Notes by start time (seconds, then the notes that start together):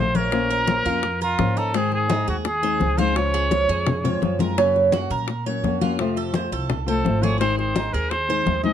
Already playing: A#1 F3 C5
0.00 A3 C4 F4
0.15 A#4 C#5, high conga
0.32 F3 A#3 C#4 F4, high bongo, high conga
0.50 A#4, high conga
0.67 F3 A#3 C#4 F4, high bongo, high conga
0.85 F2 A#3 C#4 F4, high bongo, high conga
1.03 muted nylon-string guitar stroke, high bongo, high conga
1.21 F4 A#4, high bongo, high conga
1.39 G#2 F3 A#3 C#4 F4, high bongo, low bongo, high conga
1.57 D#4 A4, high bongo, high conga
1.74 D#3 G#3 C4 D#4 G#4, high bongo, high conga
1.92 G#4, high bongo, high conga
2.09 G#3 C4 D#4 G#4, high bongo, high conga
2.27 D#2 F#4 G#4, high bongo
2.45 G#4, muted nylon-string guitar stroke, high bongo, high conga
2.62 G#3 C4 D#4 G#4 C5, high conga
2.80 C#2 G#3 C4 D#4 G#4, high bongo, low bongo, high conga
2.98 G#3 C4 D#4 F4 G#4 C5, high bongo, high conga
3.16 C#3 F3 G#3 F4 C#5, high bongo, high conga
3.34 G#4, high bongo, high conga
3.51 F3 G#3 F4 C#5, high bongo, high conga
3.69 F2 G#4, high bongo
3.87 muted nylon-string guitar stroke, high bongo, high conga, low conga
4.04 F3 G#3 C4 F4 C#5, high conga, low conga
4.22 F#2 F3 G#3 C4 F4, high bongo, low bongo, high conga
4.39 F3 G#3 C4 F4 A#4, high bongo, high conga
4.57 C#3 F#3 A#3 C#4 F#4, high bongo, high conga
4.75 high bongo, high conga
4.92 F#3 A#3 C#4 F#4, high bongo, high conga
5.10 A#2 A#4, high bongo
5.28 muted nylon-string guitar stroke, high bongo, high conga
5.46 F#3 A#3 C#4 F#4 C#5, high conga
5.63 F2 F#3 A#3 C#4 F#4, high bongo, low bongo, high conga
5.81 F#3 A#3 C#4 F4 F#4, high bongo, high conga
5.99 C3 F3 A3 C4 F4, high bongo, high conga
6.17 A4, high bongo, high conga
6.34 F3 A3 C4 F4 C5, high bongo, high conga
6.52 C2 A4, high bongo
6.69 muted nylon-string guitar stroke, high bongo, high conga, low conga
6.87 F3 A3 C4 F4 A4 C5, high conga
7.04 G#1 F3 A3 C4 F4, high bongo, low bongo, high conga
7.22 F3 A3 C4 F4 G#4 C#5, high bongo, high conga
7.39 D#3 G#3 C4 D#4 G#4 C5, high bongo
7.58 C5, high bongo, high conga
7.75 G#3 D#4 G#4, high bongo, high conga
7.93 D#2 G#4 A#4, high bongo
8.10 C5, muted nylon-string guitar stroke, high bongo, high conga
8.29 G#3 C4 D#4 G#4 C5, high conga
8.46 D#2 G#3 C4 D#4 G#4, high bongo, low bongo, high conga
8.64 G#3 C4 D#4 G#4 D#5, high bongo, high conga